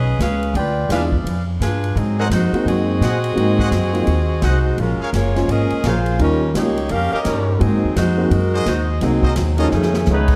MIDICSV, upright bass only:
0, 0, Header, 1, 3, 480
1, 0, Start_track
1, 0, Tempo, 352526
1, 748, Time_signature, 4, 2, 24, 8
1, 14102, End_track
2, 0, Start_track
2, 0, Title_t, "Upright bass"
2, 0, Program_c, 0, 32
2, 0, Note_on_c, 0, 35, 83
2, 250, Note_off_c, 0, 35, 0
2, 259, Note_on_c, 0, 37, 91
2, 725, Note_off_c, 0, 37, 0
2, 733, Note_on_c, 0, 38, 98
2, 1207, Note_off_c, 0, 38, 0
2, 1212, Note_on_c, 0, 40, 84
2, 1686, Note_off_c, 0, 40, 0
2, 1692, Note_on_c, 0, 41, 77
2, 2166, Note_off_c, 0, 41, 0
2, 2181, Note_on_c, 0, 43, 83
2, 2651, Note_off_c, 0, 43, 0
2, 2665, Note_on_c, 0, 44, 92
2, 3118, Note_off_c, 0, 44, 0
2, 3127, Note_on_c, 0, 41, 99
2, 3417, Note_off_c, 0, 41, 0
2, 3610, Note_on_c, 0, 42, 82
2, 4086, Note_off_c, 0, 42, 0
2, 4094, Note_on_c, 0, 46, 78
2, 4569, Note_off_c, 0, 46, 0
2, 4581, Note_on_c, 0, 44, 87
2, 5049, Note_off_c, 0, 44, 0
2, 5057, Note_on_c, 0, 42, 90
2, 5531, Note_off_c, 0, 42, 0
2, 5543, Note_on_c, 0, 39, 78
2, 6010, Note_off_c, 0, 39, 0
2, 6018, Note_on_c, 0, 36, 81
2, 6491, Note_off_c, 0, 36, 0
2, 6503, Note_on_c, 0, 34, 87
2, 6787, Note_off_c, 0, 34, 0
2, 6982, Note_on_c, 0, 30, 76
2, 7454, Note_off_c, 0, 30, 0
2, 7462, Note_on_c, 0, 32, 76
2, 7747, Note_off_c, 0, 32, 0
2, 7950, Note_on_c, 0, 34, 88
2, 8418, Note_off_c, 0, 34, 0
2, 8433, Note_on_c, 0, 39, 95
2, 8900, Note_off_c, 0, 39, 0
2, 8916, Note_on_c, 0, 37, 90
2, 9381, Note_off_c, 0, 37, 0
2, 9403, Note_on_c, 0, 41, 74
2, 9678, Note_off_c, 0, 41, 0
2, 9875, Note_on_c, 0, 43, 75
2, 10340, Note_off_c, 0, 43, 0
2, 10361, Note_on_c, 0, 44, 99
2, 10521, Note_on_c, 0, 42, 51
2, 10542, Note_off_c, 0, 44, 0
2, 10670, Note_off_c, 0, 42, 0
2, 10678, Note_on_c, 0, 39, 67
2, 10825, Note_off_c, 0, 39, 0
2, 10841, Note_on_c, 0, 41, 87
2, 11303, Note_off_c, 0, 41, 0
2, 11309, Note_on_c, 0, 42, 87
2, 11777, Note_off_c, 0, 42, 0
2, 11791, Note_on_c, 0, 39, 90
2, 12257, Note_off_c, 0, 39, 0
2, 12272, Note_on_c, 0, 36, 86
2, 12737, Note_off_c, 0, 36, 0
2, 12753, Note_on_c, 0, 39, 85
2, 13217, Note_off_c, 0, 39, 0
2, 13241, Note_on_c, 0, 41, 83
2, 13700, Note_off_c, 0, 41, 0
2, 13711, Note_on_c, 0, 37, 91
2, 14102, Note_off_c, 0, 37, 0
2, 14102, End_track
3, 0, Start_track
3, 0, Title_t, "Muted upright bass strokes"
3, 3437, Note_on_c, 9, 29, 37
3, 3573, Note_off_c, 9, 29, 0
3, 6799, Note_on_c, 9, 29, 41
3, 6935, Note_off_c, 9, 29, 0
3, 7776, Note_on_c, 9, 29, 38
3, 7912, Note_off_c, 9, 29, 0
3, 9710, Note_on_c, 9, 29, 37
3, 9846, Note_off_c, 9, 29, 0
3, 14102, End_track
0, 0, End_of_file